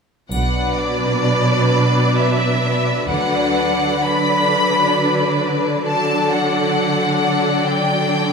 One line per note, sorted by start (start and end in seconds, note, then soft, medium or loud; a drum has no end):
0.32 1.22 B1 soft
0.32 3.04 B2 soft
0.32 3.05 F#3 soft
0.32 3.05 D4 soft
0.32 3.04 B4 soft
0.32 3.04 D5 soft
0.32 0.76 F#5 medium
0.32 triangle soft
0.78 2.17 D5 soft
2.16 3.08 E5 medium
3.08 4.01 D2 soft
3.08 8.33 D3 soft
3.08 4.03 F#3 soft
3.08 4.03 D4 soft
3.08 4.03 B4 soft
3.08 4.03 D5 soft
3.08 4.04 F#5 medium
4.05 5.82 F#3 soft
4.05 5.82 D4 soft
4.05 5.82 B4 soft
4.05 5.82 D5 soft
4.05 5.41 B5 medium
5.86 8.33 F#3 soft
5.86 8.33 D4 soft
5.86 8.33 A4 soft
5.86 8.33 D5 soft
5.86 6.28 A5 medium
6.31 7.65 F#5 medium
7.66 8.33 G5 medium